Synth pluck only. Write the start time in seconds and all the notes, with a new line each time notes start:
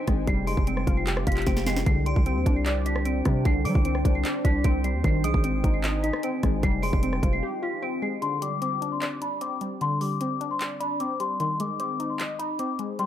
Already playing: C4 D#4 D#5
0.08 G#3
0.28 G3
0.47 G#3
0.67 C4
0.87 F4
1.07 G4
1.27 F4
1.47 C4
1.66 G#3
1.86 D3
2.06 G3
2.26 C4
2.46 D4
2.66 D5
2.86 D4
3.06 C4
3.25 G3
3.45 D3
3.65 G3
3.85 C4
4.05 D4
4.25 D5
4.45 D4
4.64 C4
4.84 G3
5.04 D#3
5.24 G#3
5.44 C4
5.64 D#4
5.84 D#5
6.04 D#4
6.24 C4
6.43 G#3
6.63 G3
6.83 G#3
7.03 C4
7.23 F4
7.43 G4
7.63 F4
7.82 C4
8.02 G#3
8.22 D3
8.42 G3
8.62 C4
8.82 D4
9.02 D5
9.22 D4
9.41 C4
9.61 G3
9.81 D3
10.01 G3
10.21 C4
10.41 D4
10.61 D5
10.80 D4
11.00 C4
11.20 G3
11.40 D#3
11.60 G#3
11.80 C4
12.00 D#4
12.20 D#5
12.39 D#4
12.59 C4
12.79 G#3
12.99 G3